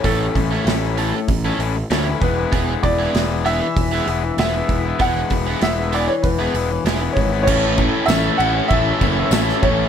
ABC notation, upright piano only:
X:1
M:4/4
L:1/16
Q:1/4=97
K:A
V:1 name="Upright piano"
A8 z6 B2- | B2 d4 e6 e4 | f4 e2 d c B6 c2 | c4 e2 f2 e6 c2 |]